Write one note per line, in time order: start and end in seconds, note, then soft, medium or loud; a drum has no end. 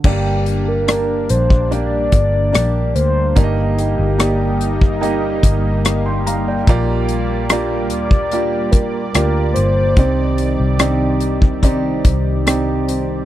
0.04 1.26 G1 medium
0.04 3.35 G2 medium
0.04 1.26 G2 medium
0.04 13.25 G3 medium
0.04 0.84 A#3 medium
0.04 9.93 A#3 medium
0.04 0.84 D4 medium
0.04 3.34 D4 medium
0.04 0.70 G4 medium
0.04 0.84 G4 medium
0.04 0.85 D5 medium
0.04 kick loud
0.04 crash medium
0.46 closed hi-hat medium
0.68 1.32 A#4 medium
0.87 1.67 A#3 medium
0.87 1.71 A#3 medium
0.87 1.67 D4 medium
0.87 1.71 D4 medium
0.87 1.67 G4 medium
0.87 1.72 G4 medium
0.87 1.68 D5 medium
0.87 cross-stick medium
0.87 closed hi-hat medium
1.29 2.09 A#1 medium
1.29 1.73 C5 loud
1.29 closed hi-hat medium
1.50 kick medium
1.71 2.50 A#3 medium
1.71 2.52 A#3 medium
1.71 2.50 D4 medium
1.71 2.52 D4 medium
1.71 2.50 G4 medium
1.71 2.54 G4 medium
1.71 2.95 D5 loud
1.71 2.50 D5 medium
1.71 closed hi-hat medium
2.12 2.51 G1 medium
2.12 kick medium
2.12 closed hi-hat medium
2.52 2.93 A#1 medium
2.52 3.32 A#3 medium
2.52 2.95 A#3 medium
2.52 3.32 D4 medium
2.52 3.45 D4 medium
2.52 3.32 G4 medium
2.52 4.20 G4 medium
2.52 3.32 D5 medium
2.52 cross-stick medium
2.52 closed hi-hat medium
2.95 3.34 D2 medium
2.95 4.18 A#3 medium
2.95 3.39 C5 loud
2.95 closed hi-hat medium
3.36 3.95 G1 medium
3.36 6.67 G2 medium
3.36 4.57 G2 medium
3.36 4.15 A#3 medium
3.36 4.15 D#4 medium
3.36 6.65 D#4 medium
3.36 4.15 G4 medium
3.36 3.81 A#4 medium
3.36 3.43 D5 medium
3.36 kick medium
3.36 closed hi-hat medium
3.43 4.19 D#5 medium
3.79 5.44 G4 medium
3.79 closed hi-hat medium
3.99 5.39 G1 medium
4.18 4.97 A#3 medium
4.18 5.02 A#3 medium
4.18 4.97 D#4 medium
4.18 5.02 D#4 medium
4.18 4.98 G4 medium
4.18 5.03 G4 medium
4.18 4.98 D5 medium
4.18 cross-stick loud
4.18 closed hi-hat medium
4.61 closed hi-hat medium
4.81 kick medium
5.01 5.80 A#3 medium
5.01 5.84 A#3 medium
5.01 5.80 D#4 medium
5.01 5.84 D#4 medium
5.01 5.80 G4 medium
5.01 5.86 G4 medium
5.01 5.81 D#5 medium
5.01 closed hi-hat medium
5.43 6.63 G1 medium
5.43 kick medium
5.43 closed hi-hat medium
5.85 6.26 A#3 medium
5.85 6.76 D#4 medium
5.85 7.51 G4 medium
5.85 cross-stick medium
5.85 closed hi-hat medium
6.06 6.25 G5 soft
6.06 6.25 C6 medium
6.27 7.50 A#3 medium
6.27 6.46 F5 medium
6.27 6.46 A#5 medium
6.27 closed hi-hat medium
6.48 6.68 D5 medium
6.48 6.86 G5 medium
6.67 7.91 A#1 medium
6.67 9.97 A#2 medium
6.67 7.87 A#2 medium
6.67 7.46 A#3 loud
6.67 7.46 F4 loud
6.67 7.46 G4 medium
6.67 13.25 D5 medium
6.67 7.47 D5 loud
6.67 kick loud
6.67 closed hi-hat medium
7.09 closed hi-hat medium
7.50 8.31 A#3 medium
7.50 8.28 A#3 medium
7.50 8.33 D4 medium
7.50 8.28 F4 medium
7.50 8.33 G4 medium
7.50 8.29 G4 medium
7.50 8.29 D5 medium
7.50 cross-stick loud
7.50 closed hi-hat medium
7.90 8.73 D2 medium
7.90 8.73 D5 loud
7.90 closed hi-hat medium
8.11 kick medium
8.32 9.14 A#3 medium
8.32 9.11 A#3 medium
8.32 9.15 D4 medium
8.32 9.11 F4 medium
8.32 9.11 G4 medium
8.32 9.16 G4 medium
8.32 9.11 D5 medium
8.32 closed hi-hat medium
8.72 9.11 A#1 medium
8.72 9.12 A#4 medium
8.72 kick medium
8.72 closed hi-hat medium
9.13 9.53 D2 medium
9.13 9.93 A#3 medium
9.13 9.54 A#3 medium
9.13 10.80 D4 medium
9.13 9.93 F4 medium
9.13 9.93 G4 medium
9.13 10.80 G4 medium
9.13 9.55 A#4 medium
9.13 9.94 D5 medium
9.13 cross-stick medium
9.13 closed hi-hat medium
9.54 9.95 G1 medium
9.54 10.05 A#3 medium
9.54 10.79 C5 medium
9.54 closed hi-hat medium
9.97 10.55 C2 medium
9.97 13.25 C3 medium
9.97 11.18 C3 medium
9.97 13.25 D#3 medium
9.97 10.75 C4 medium
9.97 10.76 D#4 medium
9.97 10.76 G4 medium
9.97 10.76 D5 medium
9.97 kick loud
9.97 closed hi-hat medium
10.38 closed hi-hat medium
10.60 12.01 C2 medium
10.79 11.62 C4 medium
10.79 11.59 C4 medium
10.79 11.63 D4 medium
10.79 11.59 D#4 medium
10.79 11.59 G4 medium
10.79 11.64 G4 medium
10.79 11.59 D5 medium
10.79 cross-stick loud
10.79 closed hi-hat medium
11.20 closed hi-hat medium
11.42 kick medium
11.63 12.42 C4 medium
11.63 12.45 C4 medium
11.63 12.47 D4 medium
11.63 12.43 D#4 medium
11.63 12.43 G4 medium
11.63 12.47 G4 medium
11.63 12.43 D5 medium
11.63 kick medium
11.63 closed hi-hat medium
12.05 13.25 C2 medium
12.05 kick medium
12.05 closed hi-hat medium
12.46 13.25 C4 medium
12.46 12.87 C4 medium
12.46 13.25 D4 soft
12.46 13.25 D#4 medium
12.46 13.25 G4 medium
12.46 13.25 D5 medium
12.46 cross-stick medium
12.46 closed hi-hat medium
12.89 13.25 C4 medium
12.89 closed hi-hat medium